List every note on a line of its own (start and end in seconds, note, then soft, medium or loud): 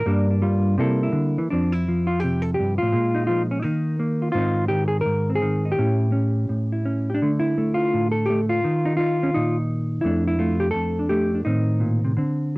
0.00 0.29 A#4 medium
0.06 0.76 G2 medium
0.06 0.41 G3 medium
0.06 0.77 A#3 medium
0.06 0.29 D4 medium
0.31 0.76 D4 soft
0.42 0.76 G3 medium
0.42 0.78 F4 medium
0.78 1.12 C3 medium
0.78 1.38 G3 medium
0.78 1.50 A#3 medium
0.78 1.02 E4 medium
0.78 1.50 A4 medium
1.03 1.50 E4 medium
1.12 1.37 D3 medium
1.38 1.50 E3 medium
1.50 2.59 F2 medium
1.50 1.88 F3 soft
1.50 2.93 C4 soft
1.50 1.72 D4 medium
1.72 2.45 E4 medium
1.88 2.93 F3 medium
2.07 2.20 F4 medium
2.20 2.92 C3 medium
2.20 2.42 G4 medium
2.42 2.54 A4 medium
2.54 2.78 G4 medium
2.60 2.82 G2 medium
2.78 3.26 F4 medium
2.82 2.94 A2 medium
2.92 3.64 A#2 medium
2.92 3.64 G#3 soft
3.15 3.51 D#4 medium
3.27 3.63 F3 medium
3.27 3.41 F4 medium
3.51 3.59 C#4 medium
3.62 4.33 D#3 medium
3.62 3.99 A#3 soft
3.62 4.34 D#4 medium
3.99 4.35 A#3 medium
4.22 4.31 F4 soft
4.32 5.04 G#2 medium
4.32 4.68 D#3 soft
4.32 5.28 C4 soft
4.32 4.68 F4 medium
4.37 5.64 D#4 soft
4.68 5.40 D#3 medium
4.68 4.87 G4 medium
4.88 5.01 G#4 medium
5.01 5.35 A#4 medium
5.06 5.74 G#2 medium
5.30 5.75 C4 soft
5.35 5.71 G#4 medium
5.42 5.76 D#3 medium
5.65 5.75 D#4 soft
5.72 7.05 G4 medium
5.78 6.48 A2 medium
5.78 6.11 C#4 soft
5.78 6.71 E4 soft
6.12 6.84 C#4 medium
6.49 7.19 A2 soft
6.72 7.19 E4 soft
6.86 7.14 C#4 medium
7.10 7.19 G4 soft
7.14 7.30 D4 medium
7.22 8.63 D3 medium
7.22 7.57 A3 soft
7.39 8.13 E4 medium
7.58 8.28 A3 medium
7.74 8.11 F4 medium
7.94 8.63 A2 soft
8.12 8.49 A4 medium
8.26 8.40 G4 medium
8.30 8.63 A3 medium
8.50 8.96 F4 medium
8.64 10.04 D#3 medium
8.86 8.98 D#4 medium
8.97 9.22 D#4 medium
8.97 9.56 F4 medium
9.23 9.34 C#4 medium
9.34 10.03 A#2 medium
9.34 10.05 D#4 medium
10.01 10.73 F2 medium
10.01 10.39 A3 soft
10.01 10.26 E4 medium
10.06 10.98 D4 soft
10.28 10.60 E4 medium
10.39 11.09 A3 medium
10.39 10.70 F4 medium
10.60 10.68 G4 medium
10.71 11.45 F2 medium
10.71 11.44 A4 medium
10.99 11.33 D4 soft
11.09 11.44 A3 medium
11.09 11.44 G4 medium
11.35 11.45 D4 soft
11.45 12.16 A2 medium
11.45 12.18 D#3 soft
11.45 12.17 C4 soft
11.45 12.17 D#4 medium
11.80 12.04 A#2 medium
12.04 12.16 C3 soft
12.17 12.58 D3 medium
12.17 12.58 C4 soft